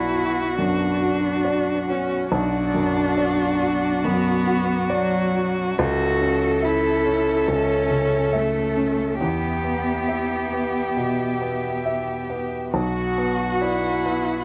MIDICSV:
0, 0, Header, 1, 5, 480
1, 0, Start_track
1, 0, Key_signature, 2, "minor"
1, 0, Tempo, 867052
1, 1282, Time_signature, 4, 2, 24, 8
1, 3202, Tempo, 852273
1, 4642, Tempo, 878477
1, 7976, End_track
2, 0, Start_track
2, 0, Title_t, "String section"
2, 0, Program_c, 0, 48
2, 0, Note_on_c, 0, 59, 54
2, 0, Note_on_c, 0, 66, 52
2, 0, Note_on_c, 0, 71, 49
2, 1260, Note_off_c, 0, 66, 0
2, 1263, Note_off_c, 0, 59, 0
2, 1263, Note_off_c, 0, 71, 0
2, 1276, Note_on_c, 0, 74, 53
2, 1278, Note_on_c, 0, 59, 54
2, 1279, Note_on_c, 0, 66, 56
2, 3176, Note_off_c, 0, 74, 0
2, 3177, Note_off_c, 0, 59, 0
2, 3177, Note_off_c, 0, 66, 0
2, 3198, Note_on_c, 0, 61, 62
2, 3201, Note_on_c, 0, 76, 60
2, 3203, Note_on_c, 0, 69, 64
2, 5105, Note_off_c, 0, 76, 0
2, 5111, Note_on_c, 0, 76, 51
2, 5113, Note_on_c, 0, 67, 50
2, 5116, Note_off_c, 0, 61, 0
2, 5117, Note_on_c, 0, 59, 52
2, 5118, Note_off_c, 0, 69, 0
2, 7024, Note_off_c, 0, 76, 0
2, 7045, Note_off_c, 0, 59, 0
2, 7047, Note_off_c, 0, 67, 0
2, 7051, Note_on_c, 0, 59, 45
2, 7054, Note_on_c, 0, 78, 45
2, 7055, Note_on_c, 0, 71, 50
2, 7976, Note_off_c, 0, 59, 0
2, 7976, Note_off_c, 0, 71, 0
2, 7976, Note_off_c, 0, 78, 0
2, 7976, End_track
3, 0, Start_track
3, 0, Title_t, "Violin"
3, 0, Program_c, 1, 40
3, 0, Note_on_c, 1, 66, 54
3, 1264, Note_off_c, 1, 66, 0
3, 1286, Note_on_c, 1, 66, 54
3, 3201, Note_on_c, 1, 69, 73
3, 3210, Note_off_c, 1, 66, 0
3, 5115, Note_off_c, 1, 69, 0
3, 5118, Note_on_c, 1, 67, 49
3, 6917, Note_off_c, 1, 67, 0
3, 7048, Note_on_c, 1, 66, 52
3, 7976, Note_off_c, 1, 66, 0
3, 7976, End_track
4, 0, Start_track
4, 0, Title_t, "Cello"
4, 0, Program_c, 2, 42
4, 0, Note_on_c, 2, 64, 86
4, 320, Note_off_c, 2, 64, 0
4, 323, Note_on_c, 2, 62, 88
4, 1044, Note_on_c, 2, 61, 73
4, 1053, Note_off_c, 2, 62, 0
4, 1276, Note_off_c, 2, 61, 0
4, 1279, Note_on_c, 2, 62, 111
4, 2235, Note_on_c, 2, 59, 101
4, 2244, Note_off_c, 2, 62, 0
4, 2711, Note_on_c, 2, 54, 92
4, 2719, Note_off_c, 2, 59, 0
4, 3199, Note_off_c, 2, 54, 0
4, 3203, Note_on_c, 2, 66, 113
4, 3685, Note_on_c, 2, 64, 89
4, 3693, Note_off_c, 2, 66, 0
4, 4161, Note_on_c, 2, 61, 98
4, 4170, Note_off_c, 2, 64, 0
4, 4646, Note_on_c, 2, 57, 81
4, 4654, Note_off_c, 2, 61, 0
4, 5119, Note_off_c, 2, 57, 0
4, 5126, Note_on_c, 2, 59, 79
4, 6790, Note_off_c, 2, 59, 0
4, 7048, Note_on_c, 2, 66, 83
4, 7524, Note_on_c, 2, 64, 82
4, 7533, Note_off_c, 2, 66, 0
4, 7976, Note_off_c, 2, 64, 0
4, 7976, End_track
5, 0, Start_track
5, 0, Title_t, "Grand piano"
5, 0, Program_c, 3, 0
5, 0, Control_c, 3, 64, 127
5, 0, Note_on_c, 3, 35, 60
5, 0, Note_on_c, 3, 66, 45
5, 0, Note_on_c, 3, 74, 46
5, 82, Note_off_c, 3, 66, 0
5, 82, Note_on_c, 3, 66, 40
5, 227, Note_off_c, 3, 74, 0
5, 300, Note_off_c, 3, 35, 0
5, 325, Note_on_c, 3, 42, 47
5, 468, Note_off_c, 3, 66, 0
5, 566, Note_on_c, 3, 66, 49
5, 709, Note_off_c, 3, 42, 0
5, 801, Note_on_c, 3, 74, 52
5, 948, Note_off_c, 3, 66, 0
5, 1040, Note_on_c, 3, 66, 50
5, 1185, Note_off_c, 3, 74, 0
5, 1283, Note_on_c, 3, 35, 73
5, 1291, Control_c, 3, 64, 0
5, 1379, Control_c, 3, 64, 127
5, 1425, Note_off_c, 3, 66, 0
5, 1520, Note_on_c, 3, 42, 52
5, 1760, Note_on_c, 3, 74, 57
5, 1903, Note_off_c, 3, 42, 0
5, 1997, Note_on_c, 3, 66, 51
5, 2141, Note_off_c, 3, 74, 0
5, 2216, Note_off_c, 3, 35, 0
5, 2241, Note_on_c, 3, 42, 55
5, 2380, Note_off_c, 3, 66, 0
5, 2474, Note_on_c, 3, 66, 59
5, 2621, Note_off_c, 3, 42, 0
5, 2711, Note_on_c, 3, 74, 63
5, 2859, Note_off_c, 3, 66, 0
5, 2961, Note_on_c, 3, 66, 56
5, 3103, Note_off_c, 3, 74, 0
5, 3202, Note_off_c, 3, 66, 0
5, 3205, Note_on_c, 3, 37, 85
5, 3210, Control_c, 3, 64, 0
5, 3316, Control_c, 3, 64, 127
5, 3441, Note_on_c, 3, 61, 58
5, 3676, Note_on_c, 3, 76, 56
5, 3824, Note_off_c, 3, 61, 0
5, 3918, Note_on_c, 3, 61, 55
5, 4061, Note_off_c, 3, 76, 0
5, 4138, Note_off_c, 3, 37, 0
5, 4157, Note_on_c, 3, 37, 61
5, 4301, Note_off_c, 3, 61, 0
5, 4396, Note_on_c, 3, 49, 57
5, 4635, Note_on_c, 3, 76, 53
5, 4781, Note_off_c, 3, 49, 0
5, 4875, Note_on_c, 3, 61, 47
5, 5018, Note_off_c, 3, 76, 0
5, 5094, Note_off_c, 3, 37, 0
5, 5115, Note_off_c, 3, 61, 0
5, 5115, Note_on_c, 3, 40, 59
5, 5127, Control_c, 3, 64, 0
5, 5203, Control_c, 3, 64, 127
5, 5351, Note_on_c, 3, 59, 42
5, 5594, Note_on_c, 3, 76, 46
5, 5741, Note_off_c, 3, 59, 0
5, 5838, Note_on_c, 3, 59, 37
5, 5984, Note_off_c, 3, 76, 0
5, 6061, Note_off_c, 3, 40, 0
5, 6077, Note_on_c, 3, 47, 45
5, 6227, Note_off_c, 3, 59, 0
5, 6323, Note_on_c, 3, 59, 42
5, 6467, Note_off_c, 3, 47, 0
5, 6563, Note_on_c, 3, 76, 44
5, 6710, Note_off_c, 3, 59, 0
5, 6805, Note_on_c, 3, 59, 45
5, 6951, Note_off_c, 3, 76, 0
5, 7045, Note_on_c, 3, 35, 60
5, 7047, Note_off_c, 3, 59, 0
5, 7058, Control_c, 3, 64, 0
5, 7155, Control_c, 3, 64, 127
5, 7286, Note_on_c, 3, 59, 46
5, 7525, Note_on_c, 3, 74, 47
5, 7668, Note_off_c, 3, 59, 0
5, 7766, Note_on_c, 3, 59, 41
5, 7905, Note_off_c, 3, 74, 0
5, 7976, Note_off_c, 3, 35, 0
5, 7976, Note_off_c, 3, 59, 0
5, 7976, End_track
0, 0, End_of_file